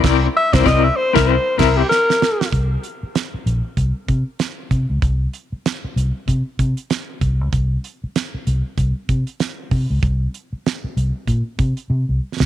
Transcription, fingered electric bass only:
X:1
M:4/4
L:1/16
Q:"Swing 16ths" 1/4=96
K:Cmix
V:1 name="Fingered electric bass" clef=bass
C,,2 z C,, C,,2 z C,,2 z C,,2 z4 | C,,2 z4 B,,, z C,, z C, z3 C, _D,, | C,,2 z4 C,, z C, z C, z3 C,, _D,, | C,,2 z4 C,, z C,, z C, z3 C, _D,, |
C,,2 z4 C,, z B,, z C, z C, C,, z _D,, |]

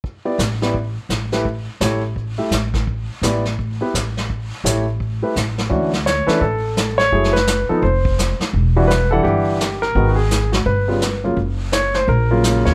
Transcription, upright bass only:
X:1
M:4/4
L:1/8
Q:"Swing" 1/4=170
K:Glyd
V:1 name="Upright bass" clef=bass
z2 A,,,3 z A,,,2- | A,,, z A,,,3 z A,,,2- | A,,, z A,,,3 z A,,,2- | A,,, z A,,,3 z A,,,2 |
D,,3 z A,,,4 | F,,,3 z =F,,,3 z | E,,,4 G,,,4 | ^G,,,4 =G,,,4 |
F,,,4 ^A,,,3 _E,, |]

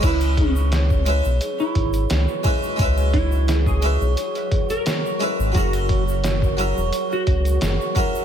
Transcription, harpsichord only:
X:1
M:4/4
L:1/16
Q:"Swing 16ths" 1/4=87
K:F#mix
V:1 name="Harpsichord"
[G,CEB]6 [G,CEB] z6 z [G,CEB]2 | [G,CEB]6 [G,CEB] z6 z [G,CEB]2 | [F,CEA]6 [F,CEA] z6 z [F,CEA]2 |]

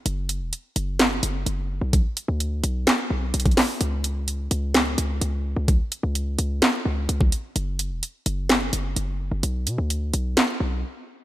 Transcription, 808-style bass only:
X:1
M:4/4
L:1/16
Q:1/4=128
K:Bdor
V:1 name="808-style bass" clef=bass
F,,,3 E,,, z2 F,,,4 F,,,2 F,,,3 B,,,- | B,,, z2 D,,3 B,,,2 z2 B,,,2 B,,,2 z2 | C,,6 C,,4 C,,2 C,,3 C,,- | C,, z2 C,,3 C,,2 z2 C,,2 C,,2 z2 |
F,,,3 E,,, z2 F,,,4 F,,,2 F,,,3 F,,, | B,,,2 B,, D,,3 B,,,2 z2 B,,,2 z4 |]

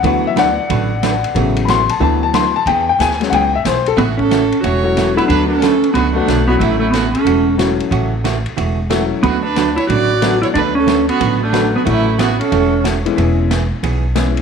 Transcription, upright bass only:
X:1
M:4/4
L:1/8
Q:"Swing" 1/4=183
K:A
V:1 name="Upright bass" clef=bass
D,,4 A,,,4 | A,,,4 D,,4 | E,,2 D,,2 C,,2 B,,,2 | A,,,4 E,,,4 |
D,,4 C,,2 B,,,2 | A,,,4 E,,,4 | A,,,4 E,,,4 | D,,4 A,,,4 |
D,,4 A,,,4 | A,,,4 E,,,4 | E,,,4 B,,,4 |]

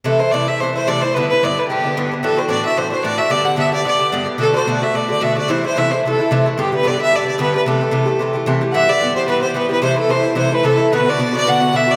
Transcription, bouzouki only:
X:1
M:4/4
L:1/8
Q:"Swing" 1/4=221
K:Ador
V:1 name="Bouzouki"
[C,E,A,E] [E,A,E] [C,E,A,E] [E,A,E] [C,E,A,E] [E,A,E] [C,E,A,E] [E,A,E] | [G,,D,B,E] [D,B,E] [G,,D,B,E] [D,B,E] [G,,D,B,E] [D,B,E] [G,,D,B,E] [D,B,E] | [A,,E,DF] [E,DF] [A,,E,DF] [E,DF] [A,,E,DF] [E,DF] [A,,E,DF] [E,DF] | [G,,D,B,G] [D,B,G] [G,,D,B,G] [D,B,G] [G,,D,B,G] [D,B,G] [G,,D,B,G] [D,B,G] |
[B,,D,A,F] [D,A,F] [B,,D,A,F] [D,A,F] [B,,D,A,F] [D,A,F] [B,,D,A,F] [D,A,F] | [C,E,A,E] [E,A,E] [C,E,A,E] [E,A,E] [C,E,A,E] [E,A,E] [C,E,A,E] [E,A,E] | [G,,D,B,G] [D,B,G] [G,,D,B,G] [D,B,G] [G,,D,B,G] [D,B,G] [G,,D,B,G] [D,B,G] | [C,E,A,G] [E,A,G] [C,E,A,G] [E,A,G] [C,E,A,G] [E,A,G] [C,E,A,G] [E,A,G] |
[G,,E,B,G] [E,B,G] [G,,E,B,G] [E,B,G] [G,,E,B,G] [E,B,G] [G,,E,B,G] [E,B,G] | [C,E,A,E] [E,A,E] [C,E,A,E] [E,A,E] [C,E,A,E] [E,A,E] [C,E,A,E] [E,A,E] | [B,,D,B,F] [D,B,F] [B,,D,B,F] [D,B,F] [B,,D,B,F] [D,B,F] [B,,D,B,F] [D,B,F] |]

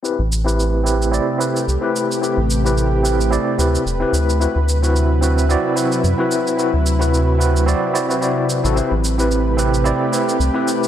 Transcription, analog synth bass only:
X:1
M:4/4
L:1/16
Q:"Swing 16ths" 1/4=110
K:Ador
V:1 name="Analog synth bass" clef=bass
z A,,,6- A,,, z4 C,, z3 | z A,,,6- A,,, z2 D,, z E,,, z D,,2 | z D,,6- D,, z4 F,, z3 | z D,,6- D,, z6 z A,,, |
z A,,,6- A,,, z4 C,, z3 |]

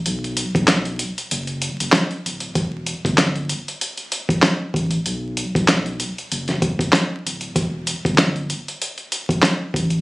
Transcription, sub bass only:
X:1
M:4/4
L:1/16
Q:"Swing 16ths" 1/4=96
K:Em
V:1 name="Sub bass" clef=bass
B,,,3 B,,,4 z F,,,3 F,,, z2 D,,,2 | E,,,3 G,,,4 z4 E,,, z2 A,,,2 | B,,,3 B,,,4 z F,,,3 F,,, z2 D,,,2 | E,,,3 G,,,4 z4 E,,, z2 A,,,2 |]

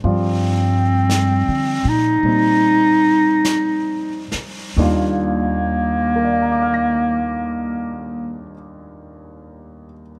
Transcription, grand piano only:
X:1
M:4/4
L:1/8
Q:"Swing" 1/4=44
K:Eb
V:1 name="Grand piano"
z8 | z2 [Bdfbd'f'b']6 |]
V:2 name="Grand piano"
[F,G,Fd]4 [G,CE]4 | [E,,E,G,DF]8 |]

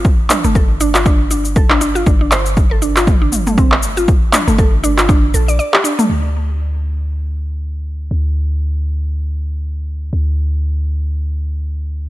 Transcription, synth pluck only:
X:1
M:4/4
L:1/16
Q:"Swing 16ths" 1/4=119
K:Gdor
V:1 name="Synth pluck"
z2 D A, A z D F D z D z A D D F | D D c z2 A D F z D z A, C z2 F | z2 D A, A z D F D z A d d G D A, | z16 |
z16 | z16 |]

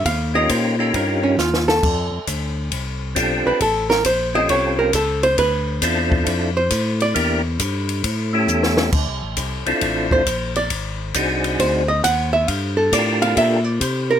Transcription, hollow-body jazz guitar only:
X:1
M:4/4
L:1/8
Q:"Swing" 1/4=135
K:Am
V:1 name="Hollow-body jazz guitar"
f _e c A _B _D F A- | A4 z3 B | A _B ^B _e ^c _B A ^B | B2 z3 c2 d- |
d z6 z | [K:Dm] z4 z c2 d- | d z3 ^B ^d ^f e | f A d f e d c B |]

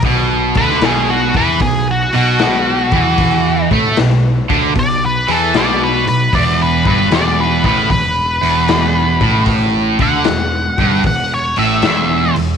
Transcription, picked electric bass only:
X:1
M:4/4
L:1/8
Q:"Swing" 1/4=76
K:E
V:1 name="Picked electric bass" clef=bass
B,,, =D,, B,,, E,, B,,, B,,,2 E,,- | E,, A,, B,,, =D,, B,,, E,, B,,, B,,, | E,,, =G,,, E,,, A,,, E,,, E,,,2 A,,,- | A,,, =D,, E,,, =G,,, E,,, A,,, E,,, E,,, |]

